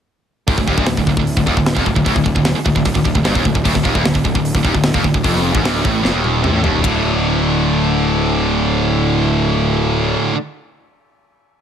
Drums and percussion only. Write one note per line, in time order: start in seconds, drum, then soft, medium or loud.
0.48 kick loud
0.48 open hi-hat medium
0.58 kick medium
0.68 kick medium
0.78 kick medium
0.86 snare loud
0.86 open hi-hat medium
0.97 kick medium
1.07 kick medium
1.17 kick medium
1.27 open hi-hat medium
1.37 kick medium
1.47 kick medium
1.57 kick medium
1.66 snare loud
1.66 open hi-hat medium
1.77 kick loud
1.86 kick medium
1.96 kick medium
2.06 kick loud
2.06 open hi-hat medium
2.16 kick medium
2.26 kick medium
2.36 kick medium
2.45 snare loud
2.45 open hi-hat medium
2.66 kick medium
2.76 kick medium
2.85 kick loud
2.85 open hi-hat medium
2.95 kick medium
3.05 kick medium
3.15 kick medium
3.25 snare loud
3.25 open hi-hat medium
3.35 kick loud
3.45 kick medium
3.55 kick medium
3.65 kick loud
3.65 open hi-hat medium
3.75 kick medium
3.75 snare soft
3.85 kick medium
3.95 kick medium
4.05 snare loud
4.05 open hi-hat medium
4.15 kick medium
4.25 kick medium
4.35 kick medium
4.45 open hi-hat medium
4.55 kick loud
4.65 kick medium
4.75 kick medium
4.83 snare loud
4.83 open hi-hat medium
4.94 kick loud
5.04 kick medium
5.14 kick medium
5.24 kick loud
5.24 open hi-hat medium
5.35 snare soft
5.55 kick loud
5.65 snare loud
5.65 open hi-hat medium
5.85 kick loud
6.05 snare medium
6.24 high tom medium
6.44 mid tom medium
6.64 floor tom medium
6.84 kick loud
6.84 ride bell medium